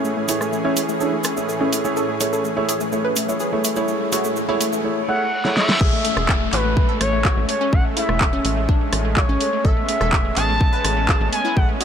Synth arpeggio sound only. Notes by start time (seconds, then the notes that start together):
0.05 A3
0.17 A3
0.29 E4
0.41 A3
0.53 A3
0.65 C#4
0.77 A3
0.89 A3
1.01 D4
1.13 A3
1.37 A3
1.49 A3
1.61 C#4
1.73 A3
1.85 A3
1.97 A4
2.09 A3
2.21 A3
2.33 A4
2.45 A3
2.57 A3
2.69 G#4
2.81 A3
2.93 A3
3.04 B4
3.16 A3
3.29 A3
3.40 G#4
3.53 A3
3.64 A3
3.77 E4
3.88 A3
4.01 A3
4.12 F#4
4.25 A3
4.37 A3
4.49 E4
4.61 A3
4.73 A3
5.81 G#4
5.93 A3
6.05 A3
6.17 G#4
6.29 A3
6.41 A3
6.53 F#4
6.65 A3
6.77 A3
6.89 A4
7.01 A3
7.13 A3
7.25 F#4
7.37 A3
7.49 A3
7.61 C#4
7.73 A3
7.85 A3
7.97 E4
8.09 A3
8.33 C#4
8.45 A3
8.57 A3
8.69 D4
8.81 A3
9.05 A3
9.17 A3
9.29 C#4
9.41 A3
9.53 A3
9.65 A4
9.77 A3
9.89 A3
10.01 A4
10.13 A3
10.25 A3
10.37 G#4
10.49 A3
10.61 A3
10.73 B4
10.85 A3
10.97 A3
11.09 G#4
11.21 A3
11.33 A3
11.45 E4
11.57 A3
11.69 A3
11.81 F#4